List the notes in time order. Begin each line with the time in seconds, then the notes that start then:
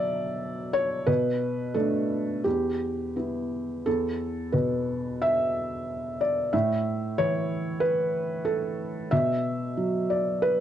Already playing: B2 F#3 D5 E5
0.73 C#5
1.07 B2 B4
1.74 A3 D4 A4
2.44 E2 G4
3.16 B3 E4
3.86 E2 A4
4.52 B2 B4
5.22 E5
6.21 D5
6.53 A2 E5
7.18 E3 C#5
7.80 B4
8.45 A4
9.11 B2 E5
9.77 F#3
10.10 D5
10.42 B4